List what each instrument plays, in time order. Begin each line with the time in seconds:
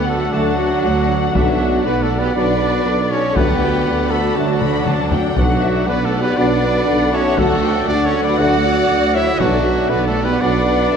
Already playing: tuba D2, double bass section D2, woodwind section D4 A4 D5 F#5, violin section F#5
0.08 viola section F#3 F#4, cello section A3, violin section F#4, trumpet A4
0.33 tuba D2, double bass section D2, trombone section F#3 A3, cello section F#3, viola section A3 D4, violin section D4 A5, french horn section D4 A4, trumpet F#4
0.59 viola section F#3 F#4, violin section F#5
0.85 double bass section D2, tuba D2, viola section A3 D4
1.10 viola section F#3 F#4
1.34 tuba B1, double bass section B1, viola section D3 D4, cello section F#3, trombone section F#3 B3, french horn section D4 F#4, violin section D4 E5, trumpet F#4, woodwind section B4, taiko
1.61 viola section F#3 B3
1.84 double bass section B1, tuba B1, viola section D3 D4, cello section B3, violin section F#4 D5, trumpet B4
2.02 cello section A3, violin section F#4, trumpet A4
2.11 viola section F#3 B3
2.19 cello section B3, violin section G4, trumpet B4
2.35 double bass section B1, tuba B1, viola section D3 D4, trombone section F#3 B3, cello section D4, french horn section D4 F#4, violin section B4, trumpet D5
2.61 viola section F#3 B3
2.85 tuba B1, double bass section B1, viola section D3 D4
3.11 viola section F#3 B3, cello section C#4, violin section A4, trumpet C#5
3.35 tuba D2, double bass section D2, trombone section F#3 A3, viola section A3 D4, cello section B3, french horn section D4 F#4, woodwind section D4 A4 D5 F#5, violin section G4 F#5, trumpet B4, taiko
3.62 viola section F#3 F#4, violin section G5
3.86 double bass section D2, tuba D2, viola section A3 D4, violin section F#5
4.11 viola section F#3 F#4, cello section A3, violin section F#4 B5, trumpet A4
4.36 tuba D2, double bass section D2, cello section F#3, trombone section F#3 A3, viola section A3 D4, french horn section D4 F#4, violin section D4 A5, trumpet F#4
4.61 viola section F#3 F#4, violin section B5, taiko mid
4.86 double bass section D2, tuba D2, viola section A3 D4, violin section A5, taiko mid
5.11 viola section F#3 F#4, violin section G5, taiko low
5.36 double bass section B1, tuba B1, viola section D3 D4, trombone section F#3 B3, cello section F#3, french horn section D4 F#4, violin section D4 F#5, trumpet F#4, woodwind section B4, taiko
5.61 viola section F#3 B3, violin section E5
5.87 double bass section B1, tuba B1, viola section D3 D4, cello section B3, violin section F#4 D5, trumpet B4
6.04 cello section A3, violin section F#4, trumpet A4
6.13 viola section F#3 B3
6.21 cello section B3, violin section G4, trumpet B4
6.37 tuba B1, double bass section B1, viola section D3 D4, trombone section F#3 B3, french horn section D4 F#4, cello section D4, violin section B4, trumpet D5
6.63 viola section F#3 B3
6.88 tuba B1, double bass section B1, viola section D3 D4, violin section F#5
7.13 viola section F#3 B3, cello section C#4, violin section A4 E5, trumpet C#5
7.37 double bass section D2, tuba D2, trombone section F#3 A3, viola section A3 D4, cello section A3, french horn section D4 F#4, violin section F#4 F#5, trumpet A4, woodwind section A4, taiko
7.64 viola section F#3 F#4, violin section G5
7.88 tuba D2, double bass section D2, viola section A3 D4, cello section D4, violin section A4 F#5, trumpet D5
8.06 cello section C#4, violin section A4, trumpet C#5
8.14 viola section F#3 F#4
8.23 cello section D4, violin section B4, trumpet D5
8.38 tuba D2, double bass section D2, trombone section F#3 A3, viola section A3 D4, french horn section D4 F#4, cello section F#4, violin section D5, trumpet F#5
8.64 viola section F#3 F#4
8.89 tuba D2, double bass section D2, viola section A3 D4
9.14 viola section F#3 F#4, cello section E4, violin section C#5, trumpet E5
9.39 double bass section B1, tuba B1, viola section D3 D4, trombone section F#3 B3, cello section F#3, woodwind section D4 B4 D5 F#5, french horn section D4 F#4, violin section D4 D5, trumpet F#4, taiko
9.64 viola section F#3 B3, violin section E5
9.89 double bass section B1, tuba B1, viola section D3 D4, cello section B3, violin section F#4 D5, trumpet B4
10.07 cello section A3, violin section F#4, trumpet A4
10.15 viola section F#3 B3
10.24 cello section B3, violin section G4, trumpet B4
10.39 double bass section B1, tuba B1, viola section D3 D4, trombone section F#3 B3, cello section D4, french horn section D4 F#4, violin section B4 F#5, trumpet D5
10.65 viola section F#3 B3
10.91 tuba B1, double bass section B1, viola section D3 D4, violin section E5